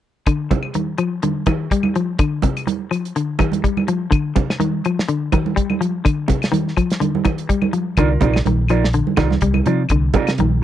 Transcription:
0.26 D3, kick, closed hi-hat, claves
0.51 C3, kick, closed hi-hat, high conga
0.63 claves
0.74 D#3, closed hi-hat, high conga
0.98 F3, closed hi-hat, claves
1.23 D3, closed hi-hat, high conga
1.46 D#3, kick, closed hi-hat, high conga, claves
1.71 G3, kick, closed hi-hat
1.83 high conga, claves
1.95 F3, closed hi-hat
2.19 D3, kick, closed hi-hat, claves
2.42 C3, kick, closed hi-hat, high conga
2.57 closed hi-hat, claves
2.67 muted clean electric guitar stroke, closed hi-hat, high conga
2.91 F3, closed hi-hat, claves
3.05 closed hi-hat
3.16 D3, closed hi-hat
3.39 D#3, kick, closed hi-hat, high conga, claves
3.52 closed hi-hat, high conga
3.64 G3, kick, closed hi-hat
3.77 high conga, claves
3.88 F3, closed hi-hat
4.11 D3, kick, closed hi-hat, claves
4.36 C3, kick, closed hi-hat, high conga
4.50 snare, claves
4.60 D#3, closed hi-hat, high conga
4.85 F3, closed hi-hat, claves
4.99 snare
5.08 D3, closed hi-hat
5.32 D#3, kick, closed hi-hat, high conga, claves
5.46 high conga
5.56 G3, kick, closed hi-hat
5.70 high conga, claves
5.81 F3, closed hi-hat
6.05 D3, kick, closed hi-hat, claves
6.28 C3, kick, closed hi-hat, high conga
6.42 snare, closed hi-hat, claves
6.52 D#3, closed hi-hat, high conga
6.68 snare
6.77 F3, kick, closed hi-hat, claves
6.90 snare, closed hi-hat
7.00 D3, closed hi-hat, high conga
7.15 high conga
7.25 D#3, kick, closed hi-hat, high conga, claves
7.38 closed hi-hat
7.49 G3, kick, closed hi-hat
7.62 high conga, claves
7.73 F3, closed hi-hat
7.97 C2 D3 D#4 F4 A#4 D5, kick, closed hi-hat, claves
8.11 A#4
8.21 A#1 C3 D#4 F4 A#4 D5, kick, closed hi-hat, high conga
8.34 snare, claves
8.46 A#1 D#3, closed hi-hat, high conga
8.68 F3 D#4 F4 A#4 D5, closed hi-hat, claves
8.84 snare
8.93 D3, closed hi-hat
9.07 high conga
9.16 C2 D#3 D#4 F4 D5, kick, snare, closed hi-hat, high conga, claves
9.31 snare, high conga
9.41 C2 G3, kick, closed hi-hat
9.54 high conga, claves
9.66 C3 F3 D#4 F4 D5, closed hi-hat
9.89 C2 D3, kick, closed hi-hat, claves
10.13 C3 D#4 F4 A#4 D5, kick, closed hi-hat, high conga
10.27 snare, closed hi-hat, claves
10.38 A#1 D#3, closed hi-hat, high conga

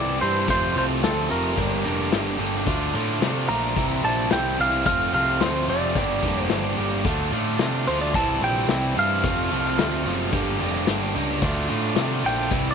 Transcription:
Already playing: C2 C3 E3 G3 C4 E4 D5
0.21 G2 C3 E3 G3 C4 E4 C5, closed hi-hat
0.48 F1 F2 C3 F3 A3 C4 F4 C5, kick, closed hi-hat
0.75 C2 F2 C3 F3 A3 C4 F4 C5, closed hi-hat
1.03 D2 F2 C3 F3 A3 C4 F4 A4, snare, closed hi-hat
1.30 F1 F2 C3 F3 A3 C4 F4 A#4, closed hi-hat
1.56 G1 G2 D3 G3 A#3 D4 G4, kick, closed hi-hat
1.85 F1 G2 D3 G3 A#3 D4 G4, closed hi-hat
2.13 G1 G2 D3 G3 A#3 D4 G4, snare, closed hi-hat
2.38 G1 G2 D3 G3 A#3 D4 G4, closed hi-hat
2.67 D2 D3 A3 D4 F4, kick, closed hi-hat
2.94 A2 D3 A3 D4 F4, closed hi-hat
3.21 C3 D3 A3 D4 F4, snare, closed hi-hat
3.49 A#1 D3 A3 D4 F4 A#5, closed hi-hat
3.75 C2 C3 E3 G3 C4 E4, kick, closed hi-hat
4.04 A#1 C3 E3 G3 C4 E4 A5, closed hi-hat
4.31 C2 C3 E3 G3 C4 E4 G5, snare, closed hi-hat
4.59 C2 C3 E3 G3 C4 E4 F5, closed hi-hat
4.85 F1 F2 C3 F3 A3 C4 F4 F5, kick, closed hi-hat
5.13 C2 F2 C3 F3 A3 C4 F4 F5, closed hi-hat
5.40 D2 F2 C3 F3 A3 C4 F4 C5, snare, closed hi-hat
5.68 F1 F2 C3 F3 A3 C4 F4 D5, closed hi-hat
5.95 G1 G2 D3 G3 A#3 D4 G4, kick, closed hi-hat
6.23 F1 G2 D3 G3 A#3 D4 G4, kick, closed hi-hat
6.43 C5
6.50 G1 G2 D3 G3 A#3 D4 G4, snare, closed hi-hat
6.78 G1 G2 D3 G3 A#3 D4 G4, closed hi-hat
7.04 D2 D3 A3 D4 F4, kick, closed hi-hat
7.32 A2 D3 A3 D4 F4, closed hi-hat
7.59 C3 D3 A3 D4 F4, snare, closed hi-hat
7.87 D2 D3 A3 D4 F4 C5, closed hi-hat
8.01 D5
8.14 C2 C3 E3 G3 C4 E4 A5, kick, closed hi-hat
8.41 A#1 C3 E3 G3 C4 E4 G5, closed hi-hat
8.68 C2 C3 E3 G3 C4 E4, snare, closed hi-hat
8.95 G2 C3 E3 G3 C4 E4 F5, closed hi-hat
9.24 F1 F2 C3 F3 A3 C4 F4, kick, closed hi-hat
9.51 C2 F2 C3 F3 A3 C4 F4, closed hi-hat
9.78 D2 F2 C3 F3 A3 C4 F4, snare, closed hi-hat
10.05 F#1 F2 C3 F3 A3 C4 F4, closed hi-hat
10.32 G1 G2 D3 G3 A#3 D4 G4, kick, closed hi-hat
10.59 F1 G2 D3 G3 A#3 D4 G4, closed hi-hat
10.87 G1 G2 D3 G3 A#3 D4 G4, snare, closed hi-hat
11.14 C#2 G2 D3 G3 A#3 D4 G4, closed hi-hat
11.42 D2 D3 A3 D4 F4, kick, closed hi-hat
11.69 A2 D3 A3 D4 F4, closed hi-hat
11.96 C3 D3 A3 D4 F4, snare, closed hi-hat
12.11 snare
12.24 A#1 D3 A3 D4 F4 G5, closed hi-hat
12.50 C2 C3 E3 G3 C4 E4, kick, closed hi-hat
12.71 D5

